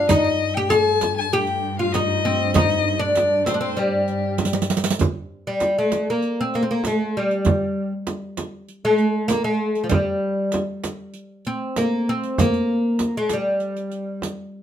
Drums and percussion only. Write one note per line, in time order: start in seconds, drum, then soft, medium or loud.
0.09 riq medium
0.09 frame drum medium
0.24 riq soft
0.71 riq soft
0.71 frame drum medium
1.01 riq soft
1.01 frame drum medium
1.32 riq soft
1.47 riq soft
1.94 riq medium
1.94 frame drum medium
2.54 riq medium
2.54 frame drum loud
2.70 riq soft
3.15 riq medium
3.15 frame drum medium
3.47 riq medium
3.47 frame drum medium
3.77 riq soft
4.08 riq soft
4.38 riq medium
4.38 frame drum medium
4.45 riq medium
4.53 riq medium
4.62 riq medium
4.70 riq medium
4.77 riq medium
4.84 riq medium
4.90 riq medium
4.99 riq medium
4.99 frame drum medium
5.60 riq soft
5.60 frame drum medium
5.92 riq soft
5.92 frame drum medium
6.22 riq soft
6.54 riq soft
6.84 riq medium
6.84 frame drum medium
7.31 riq soft
7.45 riq medium
7.45 frame drum medium
8.07 riq soft
8.07 frame drum medium
8.37 riq medium
8.37 frame drum medium
8.68 riq soft
8.98 riq soft
9.29 riq medium
9.29 frame drum medium
9.75 riq soft
9.89 riq medium
9.89 frame drum medium
10.52 riq soft
10.52 frame drum medium
10.84 riq medium
10.84 frame drum medium
11.14 riq soft
11.45 riq soft
11.76 riq medium
11.76 frame drum medium
12.23 riq soft
12.38 riq medium
12.38 frame drum medium
12.54 riq soft
12.99 riq medium
12.99 frame drum medium
13.29 riq medium
13.29 frame drum medium
13.60 riq soft
13.77 riq soft
13.91 riq soft
14.22 riq medium
14.22 frame drum medium